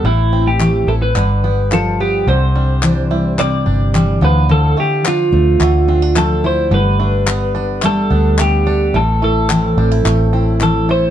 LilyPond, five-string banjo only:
\new Staff \with { instrumentName = "Five-string banjo" } { \time 4/4 \key c \major \tempo 4 = 108 <e e'>8 c'8 a8 e'8 d8 b8 f'8 b8 | d8 g8 d'8 e'8 g8 d'8 g8 f8 | f8 a8 d'4 a8 c'16 d'16 a8 e'8 | d8 a8 b8 d'8 a8 b8 a8 d'8 |
e8 a8 c'8 d'16 e'16 a8 c'8 a8 e'8 | }